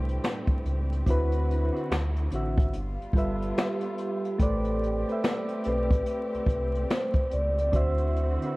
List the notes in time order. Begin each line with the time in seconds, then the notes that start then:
Already playing: C2 A2 G3 A3 C4 D4 E4 G4 C5
0.09 closed hi-hat
0.24 finger snap, snare, closed hi-hat
0.47 kick, closed hi-hat
0.65 C#2, closed hi-hat
0.92 closed hi-hat
1.06 D2 D3 C4 E4 F#4 B4, kick, closed hi-hat
1.10 B4
1.32 closed hi-hat
1.51 closed hi-hat
1.72 D3 C4 E4 F#4, closed hi-hat
1.77 B4
1.90 D2 D3, finger snap, snare, closed hi-hat
2.16 closed hi-hat
2.31 A1 D3 C4 F#4, closed hi-hat
2.36 E5
2.58 kick, closed hi-hat
2.73 G1 G3 B3 F4, closed hi-hat
3.01 G1, closed hi-hat
3.13 G1 G3 F4 A4 B4, kick, closed hi-hat
3.18 E5
3.42 closed hi-hat
3.57 G4, finger snap, snare, closed hi-hat
3.80 closed hi-hat
3.98 G4, closed hi-hat
4.25 closed hi-hat
4.38 A1 A3 C4 G4 A4 B4 C5 D5, kick, closed hi-hat
4.64 closed hi-hat
4.83 closed hi-hat
5.08 A3 G4 B4 C5, closed hi-hat
5.12 E5
5.23 finger snap, snare, closed hi-hat
5.49 closed hi-hat
5.64 B1 A3 G4 B4, closed hi-hat
5.69 C4 D5
5.91 kick, closed hi-hat
6.06 closed hi-hat
6.34 C2, closed hi-hat
6.47 C2, kick, closed hi-hat
6.75 closed hi-hat
6.90 C5, finger snap, snare, closed hi-hat
7.13 kick, closed hi-hat
7.31 C#2 D5, closed hi-hat
7.58 D5, closed hi-hat
7.72 D2 D3 C4 E4 F#4 C5, kick, closed hi-hat
7.76 E5
7.98 closed hi-hat
8.16 closed hi-hat
8.42 D3 C4 F#4 B4, closed hi-hat
8.47 E5